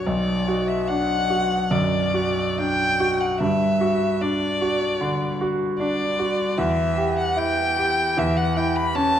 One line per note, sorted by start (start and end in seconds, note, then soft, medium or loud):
0.06 1.67 B1 soft
0.06 0.70 D5 medium
0.48 1.13 F#4 soft
0.68 0.90 E5 medium
0.88 1.54 D4 soft
0.88 1.73 F#5 medium
1.30 1.97 F#4 soft
1.71 2.41 F#2 soft
1.71 2.60 D5 medium
2.14 2.83 F#4 soft
2.59 3.24 D4 soft
2.59 3.22 G5 medium
3.00 3.40 F#4 soft
3.21 3.40 F#5 medium
3.41 4.97 G2 soft
3.41 4.23 E5 medium
3.81 4.45 F#4 soft
4.21 4.85 D4 soft
4.21 5.40 D5 medium
4.61 5.25 F#4 soft
5.01 5.64 D3 soft
5.41 6.04 F#4 soft
5.79 6.43 D4 soft
5.79 6.60 D5 medium
6.19 6.58 F#4 soft
6.58 8.14 E2 medium
6.58 7.18 E5 medium
6.97 7.62 G4 soft
7.19 7.39 F#5 medium
7.36 8.02 E4 soft
7.36 8.20 G5 medium
7.78 8.42 G4 soft
8.17 9.20 E2 medium
8.17 8.39 E5 medium
8.37 8.59 F#5 medium
8.57 9.19 E4 soft
8.57 8.78 G5 medium
8.76 8.97 B5 medium
8.95 9.20 C#4 soft
8.95 9.20 A5 medium